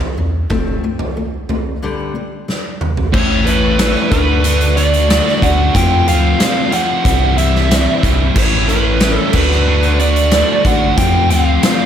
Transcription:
Already playing: steel-string acoustic guitar A2 E3
0.01 floor tom
0.18 sub bass E2, steel-string acoustic guitar A2 E3
0.50 sub bass F1, steel-string acoustic guitar F3 A3 C4, kick, floor tom
0.84 steel-string acoustic guitar F3 A3
0.99 floor tom
1.17 steel-string acoustic guitar F3 A3
1.49 steel-string acoustic guitar F3 A3, floor tom
1.82 steel-string acoustic guitar G2 D3 G3
2.15 steel-string acoustic guitar G2 D3
2.48 steel-string acoustic guitar G2 D3, snare
2.81 steel-string acoustic guitar G2 D3, mid tom
2.97 floor tom
3.12 sub bass A1, distorted electric guitar A2 E3 A3 C#4 E4 A4, lead electric guitar C#5, kick, crash
3.46 distorted electric guitar A2 E3 A3 C#4 E4 A4, lead electric guitar B4, closed hi-hat
3.79 distorted electric guitar A2 E3 A3 C#4 E4 A4, snare, closed hi-hat
4.11 sub bass D2, distorted electric guitar D3 A3 D4 F#4, lead electric guitar B4, kick, closed hi-hat
4.44 distorted electric guitar D3 A3 D4 F#4, closed hi-hat
4.61 closed hi-hat
4.76 distorted electric guitar D3 A3 D4 F#4, lead electric guitar D5, closed hi-hat
4.94 closed hi-hat
5.09 distorted electric guitar D3 A3 D4 F#4, snare, closed hi-hat
5.28 snare
5.41 sub bass D2, distorted electric guitar D3 A3 D4 F#4, lead electric guitar F#5, kick, closed hi-hat
5.74 sub bass F2, distorted electric guitar F3 A3 C4 F4, lead electric guitar G5, kick, closed hi-hat
6.07 sub bass D2, distorted electric guitar F3 A3 C4 F4, lead electric guitar F5, closed hi-hat
6.39 distorted electric guitar F3 A3 C4 F4, snare, closed hi-hat
6.71 distorted electric guitar F3 A3 C4 F4, lead electric guitar F#5, closed hi-hat
7.05 sub bass C2, distorted electric guitar C3 E3 G3 C4 E4, kick, closed hi-hat
7.38 distorted electric guitar C3 E3 G3 C4 E4, lead electric guitar E5, closed hi-hat
7.55 snare
7.69 distorted electric guitar C3 E3 G3 C4 E4, snare, closed hi-hat
8.03 sub bass C2, distorted electric guitar C3 E3 G3 C4 E4, kick, closed hi-hat
8.36 sub bass A1, distorted electric guitar A2 E3 A3 C#4 E4, lead electric guitar C#5, kick, crash
8.68 distorted electric guitar A2 E3 A3 C#4 E4, lead electric guitar B4, closed hi-hat
9.00 distorted electric guitar A2 E3 A3 C#4 E4, snare, closed hi-hat
9.15 lead electric guitar A4
9.33 sub bass D2, distorted electric guitar D3 A3 D4 F#4, lead electric guitar B4, kick, crash
9.51 snare
9.67 distorted electric guitar D3 A3 D4 F#4
9.83 closed hi-hat
9.99 distorted electric guitar D3 A3 D4 F#4, lead electric guitar D5, closed hi-hat
10.16 closed hi-hat
10.31 distorted electric guitar D3 A3 D4 F#4, snare, closed hi-hat
10.64 sub bass A1, distorted electric guitar D3 A3 D4 F#4, lead electric guitar F#5, kick, closed hi-hat
10.98 sub bass F2, distorted electric guitar F3 A3 C4 F4, lead electric guitar G5, kick, closed hi-hat
11.30 sub bass D2, distorted electric guitar F3 A3 C4 F4, lead electric guitar F5, closed hi-hat
11.63 distorted electric guitar F3 A3 C4 F4, snare, closed hi-hat

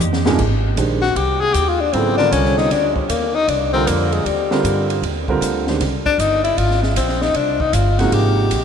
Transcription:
0.00 upright bass F2, hi-hat pedal, high tom
0.13 snare
0.25 grand piano G2 C3 F3 A#3 D#4 G#4, snare
0.38 upright bass G#1, kick, crash
0.77 upright bass A#1, grand piano D#3 G#3 D4 G4 C5, hi-hat pedal, ride
1.02 tenor saxophone F#4, snare
1.15 upright bass C2, tenor saxophone G4, ride
1.41 tenor saxophone G#4
1.54 upright bass D#2, tenor saxophone G4, hi-hat pedal, ride
1.69 tenor saxophone F4
1.81 tenor saxophone D4
1.93 upright bass G#1, grand piano C#3 F#3 B3 E4 A4, tenor saxophone C4, ride
2.18 grand piano D3 G3 C4 F4 A#4, tenor saxophone D4, snare
2.31 upright bass C2, tenor saxophone C#4, hi-hat pedal, ride
2.45 snare
2.58 tenor saxophone D#4, snare
2.70 upright bass D2, tenor saxophone D4, snare, ride
2.96 tenor saxophone G3, kick
3.09 upright bass D#2, tenor saxophone A#3, hi-hat pedal, ride
3.35 tenor saxophone D#4
3.48 upright bass C2, tenor saxophone D4, ride
3.73 grand piano D3 G3 C4 F4 A#4, tenor saxophone C4
3.87 upright bass F2, tenor saxophone A#3, hi-hat pedal, ride
4.12 tenor saxophone G#3, ride
4.25 upright bass D#2, tenor saxophone G3, ride
4.51 grand piano D3 G3 C4 F4 A#4, snare
4.64 upright bass G2, hi-hat pedal, ride
4.90 ride
5.02 upright bass D#2, ride
5.28 grand piano D3 G3 C4 F4 A#4, kick
5.41 upright bass D2, hi-hat pedal, ride
5.67 grand piano D#3 G#3 D4 G4 C5, snare
5.80 upright bass C2, snare, ride
6.05 tenor saxophone D4, muted upright bass stroke, kick
6.18 upright bass G1, tenor saxophone D#4, hi-hat pedal, ride
6.44 tenor saxophone E4, ride
6.58 upright bass G#1, tenor saxophone F4, ride
6.71 snare
6.83 tenor saxophone G#3, snare
6.96 upright bass A#1, tenor saxophone C4, hi-hat pedal, ride
7.09 snare
7.22 tenor saxophone D#4, snare
7.34 upright bass C2, tenor saxophone D4, ride
7.60 tenor saxophone D#4, kick
7.73 upright bass G1, tenor saxophone F4, hi-hat pedal, ride
7.99 grand piano C3 F3 G#3 A#3 D#4, tenor saxophone F#4, snare, ride
8.12 upright bass G#1, tenor saxophone G4, ride
8.51 upright bass A#1, hi-hat pedal, ride

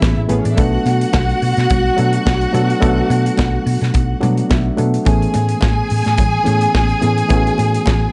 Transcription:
Already playing: reed electric piano E3 A3 B3 C#4 G#4, string section E4 E5
0.02 fingered electric bass A1, kick, snare, high conga
0.17 fingered electric bass A2
0.28 fingered electric bass A1, reed electric piano E3 A3 B3 C#4 G#4, string section B3 B4, closed hi-hat, high conga
0.38 string section C#4 C#5
0.45 fingered electric bass A2, string section D4 D5, closed hi-hat
0.52 reed electric piano F#3, string section E4 E5
0.57 fingered electric bass B1, reed electric piano A3 B3 D4 A4, string section F#4 F#5, kick, closed hi-hat, muted conga
0.85 fingered electric bass B2, closed hi-hat, muted conga
1.01 closed hi-hat
1.13 fingered electric bass B1, kick, snare, high conga
1.29 closed hi-hat
1.42 fingered electric bass B2, open hi-hat
1.57 fingered electric bass B2, snare, closed hi-hat
1.70 fingered electric bass B1, kick, closed hi-hat, muted conga, low conga
1.97 fingered electric bass B2, reed electric piano F#3 A3 B3 D4 A4, closed hi-hat
2.13 closed hi-hat
2.26 fingered electric bass B1, kick, snare, high conga
2.41 closed hi-hat
2.53 fingered electric bass B2, reed electric piano F#3 A3 B3 D4 A4, closed hi-hat, high conga
2.70 closed hi-hat
2.80 fingered electric bass B1, reed electric piano F#3 A3 B3 D4 A4, kick, closed hi-hat, muted conga
3.10 fingered electric bass B2, closed hi-hat, muted conga
3.26 closed hi-hat
3.38 fingered electric bass B1, kick, snare, high conga
3.66 fingered electric bass B2, open hi-hat
3.81 fingered electric bass B2, snare, closed hi-hat
3.94 fingered electric bass B1, kick, closed hi-hat, muted conga
4.21 fingered electric bass B2, reed electric piano F#3 A3 B3 D4 F#4 D5, closed hi-hat, low conga
4.38 closed hi-hat
4.50 fingered electric bass B1, reed electric piano E5, kick, snare, high conga
4.77 fingered electric bass B2, reed electric piano F#3 A3 B3 D4 A4 F#5, closed hi-hat, high conga
4.94 closed hi-hat
5.05 fingered electric bass A1, reed electric piano E3 A3 B3 C#4 G#4, string section G#4 G#5, kick, closed hi-hat, muted conga
5.22 closed hi-hat
5.34 fingered electric bass A2, closed hi-hat, muted conga
5.49 closed hi-hat
5.61 fingered electric bass A1, kick, snare, high conga
5.90 fingered electric bass A2, open hi-hat
6.05 fingered electric bass A2, snare, closed hi-hat
6.18 fingered electric bass A1, kick, closed hi-hat, muted conga, low conga
6.44 fingered electric bass A2, reed electric piano E3 A3 B3 C#4 G#4, closed hi-hat, muted conga
6.61 closed hi-hat
6.75 fingered electric bass A1, kick, snare, high conga
6.89 closed hi-hat
7.01 fingered electric bass A2, reed electric piano E3 A3 B3 C#4 G#4, closed hi-hat, high conga
7.18 closed hi-hat
7.28 fingered electric bass A1, reed electric piano E3 A3 B3 C#4 F#4, kick, closed hi-hat, muted conga
7.37 reed electric piano G#4
7.47 closed hi-hat
7.58 fingered electric bass A2, closed hi-hat, muted conga
7.74 closed hi-hat
7.86 fingered electric bass A1, kick, snare, high conga

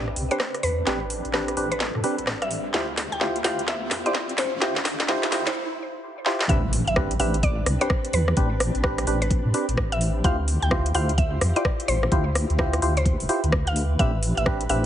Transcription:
Already playing: wobble bass A1, string machine C4 D4 G4 B4, synth pluck D5, riser
0.08 cross-stick
0.16 wobble bass C2, open hi-hat
0.31 synth stab C4 D4 G4 B4, synth pluck C5, closed hi-hat
0.40 cross-stick, snare
0.54 cross-stick, closed hi-hat
0.63 wobble bass E2, synth pluck B4, open hi-hat
0.87 wobble bass A1, synth stab C4 D4 G4 B4, string machine A4, snare, closed hi-hat
1.10 open hi-hat
1.25 wobble bass A1, closed hi-hat
1.34 synth stab C4 D4 G4 B4, cross-stick, snare
1.48 cross-stick, closed hi-hat
1.57 wobble bass A1, synth stab C4 D4 G4 B4, open hi-hat
1.72 synth pluck B4, closed hi-hat
1.80 snare, closed hi-hat
1.95 wobble bass A2, cross-stick
2.04 synth stab C4 D4 G4 B4, open hi-hat
2.18 wobble bass A1, closed hi-hat
2.27 cross-stick, snare
2.42 synth pluck E5, cross-stick, closed hi-hat
2.51 open hi-hat
2.74 wobble bass D2, string machine E4 F4 G4 C5, synth stab E4 F4 G4 C5, synth pluck F5, snare, closed hi-hat
2.98 snare, open hi-hat
3.12 wobble bass D2, synth pluck G5, closed hi-hat
3.21 synth stab E4 F4 G4 C5, snare
3.36 closed hi-hat
3.44 wobble bass D2, synth stab E4 F4 G4 C5, synth pluck F5, snare, open hi-hat
3.59 closed hi-hat
3.68 synth pluck E5, snare, closed hi-hat
3.91 wobble bass F2, snare, open hi-hat
4.06 synth stab E4 F4 G4 C5, synth pluck D5, closed hi-hat
4.15 snare
4.29 closed hi-hat
4.38 wobble bass A1, synth pluck C5, snare, open hi-hat
4.62 wobble bass D2, synth stab E4 F4 G4 C5, string machine A4, snare, closed hi-hat
4.76 snare
4.85 snare, open hi-hat
5.00 wobble bass D2, snare, closed hi-hat
5.09 synth stab E4 F4 G4 C5, snare
5.23 snare, closed hi-hat
5.32 wobble bass D2, synth stab E4 F4 G4 C5, snare, open hi-hat
5.47 synth pluck C5, snare, closed hi-hat
6.26 synth stab E4 F4 G4 C5, snare
6.41 snare
6.49 wobble bass A1, string machine C4 D4 G4 B4, synth stab C4 D4 G4 B4, synth pluck E5, kick, closed hi-hat, impact
6.73 open hi-hat
6.87 wobble bass A1, synth pluck E5, closed hi-hat
6.96 synth stab C4 D4 G4 B4, kick, cross-stick
7.11 closed hi-hat
7.20 wobble bass A1, synth stab C4 D4 G4 B4, synth pluck E5, open hi-hat
7.34 closed hi-hat
7.43 synth pluck D5, kick, closed hi-hat
7.66 wobble bass C2, cross-stick, open hi-hat
7.81 synth stab C4 D4 G4 B4, synth pluck C5, closed hi-hat
7.90 kick, cross-stick
8.05 closed hi-hat
8.13 wobble bass E2, synth pluck B4, open hi-hat
8.28 cross-stick
8.37 wobble bass A1, synth stab C4 D4 G4 B4, kick, closed hi-hat
8.60 cross-stick, open hi-hat
8.75 wobble bass A1, closed hi-hat
8.84 synth stab C4 D4 G4 B4, kick, cross-stick
8.98 cross-stick, closed hi-hat
9.07 wobble bass A1, synth stab C4 D4 G4 B4, open hi-hat
9.22 synth pluck B4, closed hi-hat
9.31 kick, closed hi-hat
9.45 wobble bass A2
9.54 synth stab C4 D4 G4 B4, open hi-hat
9.69 wobble bass A1, closed hi-hat
9.77 kick, cross-stick
9.92 synth pluck E5, closed hi-hat
10.01 open hi-hat
10.24 wobble bass D2, synth stab E4 F4 G4 C5, string machine E4 F4 C5, synth pluck F5, kick, closed hi-hat
10.48 open hi-hat
10.62 wobble bass D2, synth pluck G5, closed hi-hat
10.71 synth stab E4 F4 G4 C5, kick, cross-stick
10.86 closed hi-hat
10.95 wobble bass D2, synth stab E4 F4 G4 C5, synth pluck F5, open hi-hat
11.09 closed hi-hat
11.18 synth pluck E5, kick, closed hi-hat
11.41 wobble bass F2, cross-stick, open hi-hat
11.56 synth stab E4 F4 G4 C5, synth pluck D5, closed hi-hat
11.65 kick, cross-stick
11.80 closed hi-hat
11.88 wobble bass A1, synth pluck C5, open hi-hat
12.03 cross-stick
12.12 wobble bass D2, synth stab E4 F4 G4 C5, string machine B4, kick, closed hi-hat
12.35 cross-stick, open hi-hat
12.50 wobble bass D2, closed hi-hat
12.59 synth stab E4 F4 G4 C5, kick, cross-stick
12.73 cross-stick, closed hi-hat
12.82 wobble bass D2, synth stab E4 F4 G4 C5, open hi-hat
12.97 synth pluck C5, closed hi-hat
13.06 kick, closed hi-hat
13.20 wobble bass D1, open hi-hat
13.29 synth stab E4 F4 G4 C5, open hi-hat
13.44 wobble bass D2, closed hi-hat
13.52 kick, cross-stick
13.67 synth pluck F5, closed hi-hat
13.76 open hi-hat
13.99 wobble bass A1, string machine C4 D4 G4, synth stab C4 D4 G4 B4, synth pluck E5, kick, closed hi-hat
14.23 open hi-hat
14.37 wobble bass A1, synth pluck E5, closed hi-hat
14.46 synth stab C4 D4 G4 B4, kick, cross-stick
14.61 closed hi-hat
14.69 wobble bass A1, synth stab C4 D4 G4 B4, synth pluck E5, open hi-hat

